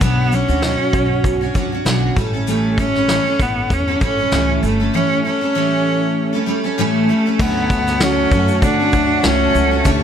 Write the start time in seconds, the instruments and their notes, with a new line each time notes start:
0.01 upright bass B1, steel-string acoustic guitar B2 F#3 C#4 D4 F#4, cello B3, kick, shaker
0.31 steel-string acoustic guitar F#3 C#4 D4 F#4, cello C#4, shaker
0.48 upright bass D2, steel-string acoustic guitar C#4 D4 F#4, shaker
0.62 steel-string acoustic guitar B2 F#3 C#4 F#4, snare, shaker
0.93 upright bass B1, kick, shaker
1.24 kick, shaker
1.41 steel-string acoustic guitar C#4 D4 F#4
1.55 upright bass C#2, steel-string acoustic guitar F#3 C#4 D4 F#4, kick, shaker
1.72 steel-string acoustic guitar C#4 D4 F#4
1.85 upright bass B1, steel-string acoustic guitar B2 F#3 C#4 D4 F#4, snare, shaker
2.16 upright bass A1, steel-string acoustic guitar G3 A3 C#4 A4, kick, shaker
2.33 steel-string acoustic guitar G3 A3 C#4 A4
2.47 steel-string acoustic guitar A2 E3 G3 A3 C#4 A4, cello A3, shaker
2.78 steel-string acoustic guitar G3 A3 C#4 A4, cello C#4, kick, shaker
2.95 steel-string acoustic guitar G3 A3 C#4 A4, snare
3.08 steel-string acoustic guitar A2 E3 G3 A3 C#4 A4, snare, shaker
3.26 steel-string acoustic guitar G3 A3 C#4 A4
3.40 upright bass A1, cello B3, kick, shaker
3.70 upright bass E2, cello C#4, kick, shaker
3.88 steel-string acoustic guitar G3 A3 C#4 A4
4.01 upright bass A1, steel-string acoustic guitar G3 A3 C#4 A4, cello C#4, kick, shaker
4.18 steel-string acoustic guitar G3 A3 C#4 A4
4.32 upright bass C#2, steel-string acoustic guitar A2 E3 G3 A3 C#4 A4, snare, shaker
4.63 upright bass G1, steel-string acoustic guitar G3 A3 C#4 A4, cello A3, shaker
4.80 steel-string acoustic guitar G3 A3 C#4 A4
4.94 steel-string acoustic guitar A2 E3 G3 A3 C#4 A4, cello C#4
5.25 steel-string acoustic guitar G3 A3 C#4 A4, cello C#4
5.41 steel-string acoustic guitar G3 A3 C#4 A4
5.55 steel-string acoustic guitar A2 E3 G3 A3 C#4 A4
6.33 steel-string acoustic guitar G3 A3 C#4 A4
6.46 steel-string acoustic guitar G3 A3 C#4 A4
6.64 steel-string acoustic guitar G3 A3 C#4 A4
6.78 steel-string acoustic guitar A2 E3 G3 A3 C#4 A4, cello A3
7.09 steel-string acoustic guitar G3 A3 C#4 A4
7.26 steel-string acoustic guitar G3 A3 C#4 A4
7.39 upright bass D2, steel-string acoustic guitar D3 F#3 A3 C#4 F#4, cello B3, string section F#4 C#5 F#5 A5, kick, crash
7.70 steel-string acoustic guitar F#3 A3 C#4 F#4, kick, shaker
7.87 snare, shaker
8.00 steel-string acoustic guitar D3 F#3 A3 C#4 F#4, cello C#4, snare, shaker
8.31 upright bass F#2, steel-string acoustic guitar F#3 A3 C#4 F#4, kick, shaker
8.48 steel-string acoustic guitar A3 C#4 F#4, shaker
8.62 upright bass D3, steel-string acoustic guitar F#3 A3 C#4 F#4, cello D4, kick, shaker
8.79 steel-string acoustic guitar A3 C#4 F#4
8.93 upright bass D2, steel-string acoustic guitar F#3 A3 F#4, kick, shaker
9.23 upright bass C#2, steel-string acoustic guitar F#3 A3 C#4 F#4, cello C#4, snare, shaker
9.55 upright bass C#2, shaker
9.71 steel-string acoustic guitar A3 C#4 F#4
9.85 upright bass D2, steel-string acoustic guitar D3 E3 A3 C#4 G4, cello A3, string section G4 E5, kick, shaker